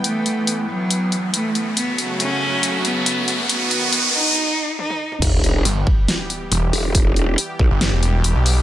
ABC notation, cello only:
X:1
M:4/4
L:1/8
Q:1/4=139
K:Em
V:1 name="Cello"
A,3 F,3 A, z | B, z ^C3 B,3 | B,3 ^D3 D z | z8 |
z8 |]